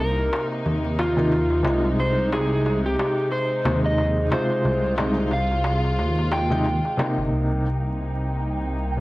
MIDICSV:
0, 0, Header, 1, 7, 480
1, 0, Start_track
1, 0, Key_signature, -3, "minor"
1, 0, Tempo, 666667
1, 1428, Time_signature, 4, 2, 24, 8
1, 6482, End_track
2, 0, Start_track
2, 0, Title_t, "Synth texture"
2, 0, Program_c, 0, 99
2, 5269, Note_on_c, 0, 79, 87
2, 6482, Note_off_c, 0, 79, 0
2, 6482, End_track
3, 0, Start_track
3, 0, Title_t, "Electric slide guitar"
3, 0, Program_c, 1, 29
3, 1, Note_on_c, 1, 70, 85
3, 333, Note_off_c, 1, 70, 0
3, 716, Note_on_c, 1, 65, 88
3, 1353, Note_off_c, 1, 65, 0
3, 1438, Note_on_c, 1, 72, 96
3, 1653, Note_off_c, 1, 72, 0
3, 1676, Note_on_c, 1, 68, 91
3, 2011, Note_off_c, 1, 68, 0
3, 2059, Note_on_c, 1, 67, 87
3, 2363, Note_off_c, 1, 67, 0
3, 2391, Note_on_c, 1, 72, 93
3, 2728, Note_off_c, 1, 72, 0
3, 2777, Note_on_c, 1, 75, 88
3, 3083, Note_off_c, 1, 75, 0
3, 3116, Note_on_c, 1, 72, 90
3, 3552, Note_off_c, 1, 72, 0
3, 3840, Note_on_c, 1, 77, 88
3, 4173, Note_off_c, 1, 77, 0
3, 4557, Note_on_c, 1, 79, 94
3, 5193, Note_off_c, 1, 79, 0
3, 6482, End_track
4, 0, Start_track
4, 0, Title_t, "String section"
4, 0, Program_c, 2, 48
4, 0, Note_on_c, 2, 48, 69
4, 0, Note_on_c, 2, 58, 64
4, 0, Note_on_c, 2, 63, 74
4, 1401, Note_off_c, 2, 58, 0
4, 1435, Note_on_c, 2, 56, 66
4, 3321, Note_off_c, 2, 63, 0
4, 3346, Note_on_c, 2, 65, 87
4, 5243, Note_off_c, 2, 48, 0
4, 5243, Note_off_c, 2, 56, 0
4, 5248, Note_off_c, 2, 65, 0
4, 5270, Note_on_c, 2, 48, 60
4, 5272, Note_on_c, 2, 63, 73
4, 5273, Note_on_c, 2, 58, 59
4, 6482, Note_off_c, 2, 48, 0
4, 6482, Note_off_c, 2, 58, 0
4, 6482, Note_off_c, 2, 63, 0
4, 6482, End_track
5, 0, Start_track
5, 0, Title_t, "Felt piano"
5, 0, Program_c, 3, 0
5, 842, Note_on_c, 3, 48, 91
5, 847, Note_on_c, 3, 58, 86
5, 856, Note_on_c, 3, 63, 103
5, 939, Note_off_c, 3, 48, 0
5, 941, Note_off_c, 3, 58, 0
5, 946, Note_off_c, 3, 63, 0
5, 1174, Note_on_c, 3, 48, 90
5, 1192, Note_on_c, 3, 56, 82
5, 1205, Note_on_c, 3, 63, 99
5, 2598, Note_off_c, 3, 48, 0
5, 2606, Note_off_c, 3, 56, 0
5, 2613, Note_off_c, 3, 63, 0
5, 2625, Note_on_c, 3, 48, 80
5, 2637, Note_on_c, 3, 56, 74
5, 2641, Note_on_c, 3, 63, 86
5, 3083, Note_off_c, 3, 48, 0
5, 3089, Note_off_c, 3, 56, 0
5, 3091, Note_off_c, 3, 63, 0
5, 3104, Note_on_c, 3, 48, 82
5, 3113, Note_on_c, 3, 56, 74
5, 3120, Note_on_c, 3, 65, 84
5, 3562, Note_off_c, 3, 48, 0
5, 3567, Note_off_c, 3, 56, 0
5, 3571, Note_off_c, 3, 65, 0
5, 3584, Note_on_c, 3, 48, 83
5, 3590, Note_on_c, 3, 56, 84
5, 3597, Note_on_c, 3, 63, 98
5, 3693, Note_off_c, 3, 48, 0
5, 3696, Note_off_c, 3, 56, 0
5, 3700, Note_off_c, 3, 63, 0
5, 3728, Note_on_c, 3, 48, 80
5, 3733, Note_on_c, 3, 56, 73
5, 3744, Note_on_c, 3, 63, 95
5, 3787, Note_off_c, 3, 48, 0
5, 3790, Note_off_c, 3, 56, 0
5, 3795, Note_off_c, 3, 63, 0
5, 4682, Note_on_c, 3, 48, 92
5, 4686, Note_on_c, 3, 56, 81
5, 4694, Note_on_c, 3, 63, 108
5, 4779, Note_off_c, 3, 48, 0
5, 4781, Note_off_c, 3, 56, 0
5, 4785, Note_off_c, 3, 63, 0
5, 5022, Note_on_c, 3, 48, 91
5, 5029, Note_on_c, 3, 58, 77
5, 5036, Note_on_c, 3, 63, 98
5, 5505, Note_off_c, 3, 48, 0
5, 5509, Note_off_c, 3, 58, 0
5, 5512, Note_off_c, 3, 63, 0
5, 6459, Note_on_c, 3, 48, 69
5, 6482, Note_off_c, 3, 48, 0
5, 6482, End_track
6, 0, Start_track
6, 0, Title_t, "Detuned saw bass"
6, 0, Program_c, 4, 39
6, 0, Note_on_c, 4, 36, 104
6, 211, Note_off_c, 4, 36, 0
6, 474, Note_on_c, 4, 39, 88
6, 1172, Note_off_c, 4, 39, 0
6, 1191, Note_on_c, 4, 36, 104
6, 1406, Note_off_c, 4, 36, 0
6, 1428, Note_on_c, 4, 36, 99
6, 2129, Note_off_c, 4, 36, 0
6, 2629, Note_on_c, 4, 39, 96
6, 3090, Note_off_c, 4, 39, 0
6, 3346, Note_on_c, 4, 36, 102
6, 4305, Note_on_c, 4, 39, 99
6, 4316, Note_off_c, 4, 36, 0
6, 4901, Note_off_c, 4, 39, 0
6, 5168, Note_on_c, 4, 31, 96
6, 5256, Note_off_c, 4, 31, 0
6, 5270, Note_on_c, 4, 36, 80
6, 6482, Note_off_c, 4, 36, 0
6, 6482, End_track
7, 0, Start_track
7, 0, Title_t, "Darbuka"
7, 0, Note_on_c, 9, 63, 43
7, 69, Note_off_c, 9, 63, 0
7, 136, Note_on_c, 9, 63, 31
7, 208, Note_off_c, 9, 63, 0
7, 236, Note_on_c, 9, 63, 81
7, 308, Note_off_c, 9, 63, 0
7, 376, Note_on_c, 9, 63, 30
7, 448, Note_off_c, 9, 63, 0
7, 473, Note_on_c, 9, 63, 45
7, 545, Note_off_c, 9, 63, 0
7, 612, Note_on_c, 9, 63, 28
7, 684, Note_off_c, 9, 63, 0
7, 712, Note_on_c, 9, 63, 86
7, 784, Note_off_c, 9, 63, 0
7, 855, Note_on_c, 9, 63, 33
7, 927, Note_off_c, 9, 63, 0
7, 952, Note_on_c, 9, 63, 50
7, 1024, Note_off_c, 9, 63, 0
7, 1085, Note_on_c, 9, 63, 36
7, 1157, Note_off_c, 9, 63, 0
7, 1186, Note_on_c, 9, 63, 80
7, 1258, Note_off_c, 9, 63, 0
7, 1332, Note_on_c, 9, 63, 36
7, 1404, Note_off_c, 9, 63, 0
7, 1435, Note_on_c, 9, 63, 47
7, 1507, Note_off_c, 9, 63, 0
7, 1672, Note_on_c, 9, 63, 74
7, 1744, Note_off_c, 9, 63, 0
7, 1817, Note_on_c, 9, 63, 35
7, 1889, Note_off_c, 9, 63, 0
7, 1915, Note_on_c, 9, 63, 52
7, 1987, Note_off_c, 9, 63, 0
7, 2058, Note_on_c, 9, 63, 34
7, 2130, Note_off_c, 9, 63, 0
7, 2157, Note_on_c, 9, 63, 82
7, 2229, Note_off_c, 9, 63, 0
7, 2292, Note_on_c, 9, 63, 32
7, 2364, Note_off_c, 9, 63, 0
7, 2387, Note_on_c, 9, 63, 46
7, 2459, Note_off_c, 9, 63, 0
7, 2631, Note_on_c, 9, 63, 91
7, 2703, Note_off_c, 9, 63, 0
7, 2767, Note_on_c, 9, 63, 34
7, 2839, Note_off_c, 9, 63, 0
7, 2866, Note_on_c, 9, 63, 50
7, 2938, Note_off_c, 9, 63, 0
7, 3006, Note_on_c, 9, 63, 34
7, 3078, Note_off_c, 9, 63, 0
7, 3108, Note_on_c, 9, 63, 88
7, 3180, Note_off_c, 9, 63, 0
7, 3240, Note_on_c, 9, 63, 38
7, 3312, Note_off_c, 9, 63, 0
7, 3349, Note_on_c, 9, 63, 48
7, 3421, Note_off_c, 9, 63, 0
7, 3486, Note_on_c, 9, 63, 34
7, 3558, Note_off_c, 9, 63, 0
7, 3584, Note_on_c, 9, 63, 85
7, 3656, Note_off_c, 9, 63, 0
7, 3725, Note_on_c, 9, 63, 36
7, 3797, Note_off_c, 9, 63, 0
7, 3823, Note_on_c, 9, 63, 50
7, 3895, Note_off_c, 9, 63, 0
7, 3969, Note_on_c, 9, 63, 34
7, 4041, Note_off_c, 9, 63, 0
7, 4062, Note_on_c, 9, 63, 76
7, 4134, Note_off_c, 9, 63, 0
7, 4209, Note_on_c, 9, 63, 35
7, 4281, Note_off_c, 9, 63, 0
7, 4312, Note_on_c, 9, 63, 51
7, 4384, Note_off_c, 9, 63, 0
7, 4455, Note_on_c, 9, 63, 33
7, 4527, Note_off_c, 9, 63, 0
7, 4549, Note_on_c, 9, 63, 83
7, 4621, Note_off_c, 9, 63, 0
7, 4693, Note_on_c, 9, 63, 40
7, 4765, Note_off_c, 9, 63, 0
7, 4795, Note_on_c, 9, 63, 44
7, 4867, Note_off_c, 9, 63, 0
7, 4935, Note_on_c, 9, 63, 34
7, 5007, Note_off_c, 9, 63, 0
7, 5037, Note_on_c, 9, 63, 83
7, 5109, Note_off_c, 9, 63, 0
7, 5173, Note_on_c, 9, 63, 37
7, 5245, Note_off_c, 9, 63, 0
7, 6482, End_track
0, 0, End_of_file